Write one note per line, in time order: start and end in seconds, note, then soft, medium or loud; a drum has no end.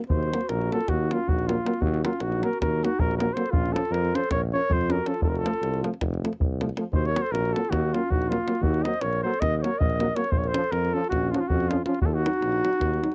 0.04 davul high soft
0.09 0.31 D#2 medium
0.09 0.53 F#4 medium
0.09 0.51 C5 medium
0.09 davul low loud
0.23 davul high soft
0.32 0.39 F#3 medium
0.32 0.41 A#3 medium
0.32 davul high medium
0.41 davul high soft
0.49 0.71 A#1 loud
0.49 0.73 A#4 medium
0.49 davul high medium
0.53 0.77 F#4 medium
0.61 davul high soft
0.71 0.78 F#3 medium
0.71 0.80 A#3 medium
0.71 0.94 F4 medium
0.71 0.90 A4 medium
0.71 davul high medium
0.81 davul high soft
0.88 1.11 D#2 medium
0.88 1.15 F#4 medium
0.88 davul high medium
0.88 davul low medium
0.92 1.14 D#4 medium
1.11 1.19 F#3 medium
1.11 1.19 A#3 medium
1.11 1.31 C#4 medium
1.11 1.30 F4 medium
1.11 davul high medium
1.28 1.57 A#1 medium
1.28 1.51 D#4 medium
1.28 1.48 F#4 medium
1.28 davul low medium
1.39 davul high soft
1.47 1.54 F#3 medium
1.47 1.85 A#3 medium
1.47 1.56 A#3 medium
1.47 1.82 F4 medium
1.47 davul high medium
1.65 1.71 F#3 medium
1.65 1.72 A#3 medium
1.65 davul high medium
1.73 davul high soft
1.81 2.03 D#2 loud
1.81 2.05 D#4 medium
1.81 2.03 F#4 medium
1.81 davul low medium
1.94 davul high soft
2.04 2.11 F#3 medium
2.04 2.11 A#3 medium
2.04 2.24 C#4 medium
2.04 2.23 F4 medium
2.04 davul high medium
2.13 davul high soft
2.20 2.42 A#1 medium
2.20 2.46 D#4 medium
2.20 2.45 F#4 medium
2.20 davul high medium
2.32 davul high soft
2.42 2.49 F#3 medium
2.42 2.50 A#3 medium
2.42 2.61 F#4 medium
2.42 2.60 A#4 medium
2.42 davul high medium
2.53 davul high soft
2.61 2.82 D#2 medium
2.61 2.85 F#4 medium
2.61 2.86 A#4 medium
2.61 davul high medium
2.61 davul low medium
2.82 2.89 F#3 medium
2.82 2.91 A#3 medium
2.82 3.03 D#4 medium
2.82 3.01 F#4 medium
2.82 davul high medium
2.99 3.28 A#1 medium
2.99 3.20 F#4 medium
2.99 3.17 A#4 loud
2.99 davul low medium
3.11 davul high soft
3.17 3.26 F#3 medium
3.17 3.26 A#3 medium
3.17 3.35 A#4 medium
3.17 davul high medium
3.22 3.38 F#4 medium
3.33 3.43 F#3 medium
3.33 3.43 A#3 medium
3.33 3.56 A4 medium
3.33 3.52 C5 medium
3.33 davul high medium
3.46 davul high soft
3.51 3.74 A#1 medium
3.51 3.77 C#4 medium
3.51 3.74 F4 loud
3.51 davul low loud
3.66 davul high soft
3.73 3.81 F3 medium
3.73 3.82 C#4 medium
3.73 3.94 F4 medium
3.73 3.93 A4 loud
3.73 davul high medium
3.85 davul high soft
3.91 4.12 F2 medium
3.91 4.18 F4 medium
3.91 4.17 A#4 loud
3.91 davul high medium
4.05 davul high soft
4.14 4.21 F3 medium
4.14 4.21 C#4 medium
4.14 4.32 A4 medium
4.14 4.31 C5 medium
4.14 davul high medium
4.24 davul high soft
4.30 4.52 A#1 medium
4.30 4.43 A#4 medium
4.30 4.41 C#5 loud
4.30 davul high medium
4.30 davul low medium
4.53 4.60 F3 medium
4.53 4.60 C#4 medium
4.53 4.74 A#4 medium
4.53 4.74 C#5 loud
4.69 4.98 F2 medium
4.69 4.96 F4 loud
4.69 4.93 C5 loud
4.69 davul low loud
4.81 davul high soft
4.90 4.97 F3 medium
4.90 4.96 C#4 medium
4.90 5.09 A#4 medium
4.90 davul high medium
4.94 5.11 F#4 medium
5.06 5.13 F3 medium
5.06 5.13 C#4 medium
5.06 5.24 F4 medium
5.06 5.23 A4 medium
5.06 davul high medium
5.14 davul high soft
5.21 5.43 F1 medium
5.21 5.30 A4 medium
5.21 davul low loud
5.27 5.36 F4 medium
5.27 5.39 A#4 medium
5.34 5.44 F#4 medium
5.34 5.84 A4 loud
5.34 davul high soft
5.42 5.50 F3 medium
5.42 5.52 A3 medium
5.42 5.86 F4 medium
5.42 davul high medium
5.54 davul high soft
5.62 5.83 C2 medium
5.62 davul high medium
5.74 davul high soft
5.82 5.89 F3 medium
5.82 5.91 A3 soft
5.82 davul high medium
5.94 davul high soft
6.01 6.23 F1 loud
6.01 davul high medium
6.01 davul low medium
6.14 davul high soft
6.24 6.31 F3 soft
6.24 6.31 A3 medium
6.24 davul high medium
6.33 davul high soft
6.41 6.69 C2 medium
6.41 davul low loud
6.61 6.67 F3 medium
6.61 6.67 A3 medium
6.61 davul high medium
6.69 davul high soft
6.77 6.85 F3 medium
6.77 6.84 A3 medium
6.77 davul high medium
6.92 7.14 D#2 medium
6.92 7.11 F#4 medium
6.92 7.07 C5 medium
6.92 davul low medium
7.05 7.23 C#5 loud
7.05 davul high soft
7.10 7.25 A#4 medium
7.15 7.22 F#3 medium
7.15 7.22 A#3 soft
7.15 davul high medium
7.22 7.35 A4 medium
7.22 7.33 C5 loud
7.26 davul high soft
7.32 7.53 A#1 medium
7.32 7.58 F#4 medium
7.32 7.54 A#4 loud
7.32 davul high medium
7.45 davul high soft
7.53 7.61 F#3 medium
7.53 7.62 A#3 medium
7.53 7.72 A4 medium
7.53 davul high medium
7.57 7.76 F4 medium
7.65 davul high soft
7.70 7.92 D#2 loud
7.70 7.95 F#4 medium
7.70 davul high medium
7.70 davul low medium
7.75 7.99 D#4 medium
7.93 8.01 F#3 medium
7.93 8.01 A#3 medium
7.93 8.12 F4 medium
7.93 davul high medium
7.97 8.14 C#4 medium
8.09 8.38 A#1 medium
8.09 8.34 D#4 medium
8.09 8.31 F#4 medium
8.09 davul low medium
8.22 davul high soft
8.29 8.36 F#3 medium
8.29 8.37 A#3 medium
8.29 8.68 A#3 medium
8.29 8.63 F4 medium
8.29 davul high medium
8.47 8.53 F#3 medium
8.47 8.54 A#3 medium
8.47 davul high medium
8.55 davul high soft
8.61 8.83 D#2 loud
8.61 8.85 F#4 medium
8.61 davul low medium
8.66 8.88 D#4 medium
8.74 davul high soft
8.83 8.92 F#3 medium
8.83 8.92 A#3 medium
8.83 9.05 C5 medium
8.83 9.02 D#5 medium
8.83 davul high medium
8.94 davul high soft
9.01 9.24 A#1 medium
9.01 9.25 A#4 loud
9.01 9.22 C#5 medium
9.01 davul high medium
9.13 davul high soft
9.23 9.31 F#3 medium
9.23 9.31 A#3 medium
9.23 9.45 A4 medium
9.23 9.42 C5 loud
9.34 davul high soft
9.40 9.62 D#2 medium
9.40 9.62 A#4 medium
9.40 9.57 D#5 loud
9.40 davul high medium
9.40 davul low medium
9.57 9.65 C5 medium
9.57 9.64 D#5 medium
9.62 9.70 F#3 medium
9.62 9.70 A#3 medium
9.62 9.81 A#4 medium
9.62 9.80 C#5 medium
9.62 davul high medium
9.79 10.09 A#1 loud
9.79 10.19 A#4 medium
9.79 10.17 D#5 loud
9.79 davul low loud
9.90 davul high soft
10.00 10.07 F#3 medium
10.00 10.06 A#3 medium
10.00 davul high medium
10.15 10.23 F#3 medium
10.15 10.22 A#3 medium
10.15 10.35 A#4 medium
10.15 10.33 C#5 medium
10.15 davul high medium
10.24 davul high soft
10.31 10.54 A#1 medium
10.31 10.46 F4 medium
10.31 10.39 C5 medium
10.31 davul low loud
10.38 10.49 C#5 medium
10.44 10.52 A#4 medium
10.44 10.73 C5 loud
10.44 davul high soft
10.50 10.76 A4 medium
10.54 10.62 F3 medium
10.54 10.62 C#4 medium
10.54 davul high medium
10.64 davul high soft
10.71 10.93 F2 medium
10.71 10.97 F4 medium
10.71 10.95 A#4 medium
10.71 davul high medium
10.85 davul high soft
10.94 11.02 F3 medium
10.94 11.01 C#4 medium
10.94 11.12 F4 medium
10.94 11.09 A4 loud
11.04 davul high soft
11.09 11.32 A#1 medium
11.09 11.33 F#4 medium
11.09 davul high medium
11.09 davul low medium
11.14 11.36 C#4 medium
11.31 11.40 F3 medium
11.31 11.40 C#4 medium
11.31 11.38 F4 medium
11.31 davul high medium
11.36 11.40 C#4 medium
11.36 11.43 D#4 medium
11.36 11.42 F#4 medium
11.40 11.51 C#4 medium
11.40 11.49 F4 medium
11.48 11.78 F2 medium
11.48 11.70 C#4 medium
11.48 11.70 F#4 medium
11.48 davul low medium
11.60 davul high soft
11.69 11.77 F3 medium
11.69 11.85 C#4 medium
11.69 11.77 C#4 medium
11.69 11.85 F4 medium
11.69 davul high medium
11.85 11.93 F3 soft
11.85 12.01 C#4 medium
11.85 11.93 C#4 medium
11.85 12.00 F4 medium
11.85 davul high medium
11.95 davul high soft
12.01 12.23 D#2 loud
12.01 12.10 D#4 medium
12.01 12.07 F#4 medium
12.01 davul low loud
12.06 12.17 F4 medium
12.06 12.15 A4 medium
12.14 13.15 D#4 medium
12.14 13.15 F#4 loud
12.25 12.31 F#3 medium
12.25 12.32 D#4 medium
12.25 davul high medium
12.33 davul high soft
12.41 12.63 A#1 medium
12.41 davul high medium
12.52 davul high soft
12.64 12.71 F#3 medium
12.64 12.71 D#4 medium
12.64 davul high medium
12.73 davul high soft
12.79 13.01 D#2 medium
12.79 davul high medium
12.79 davul low medium
12.94 davul high soft
13.03 13.09 F#3 soft
13.03 13.09 D#4 medium
13.03 davul high medium
13.12 davul high soft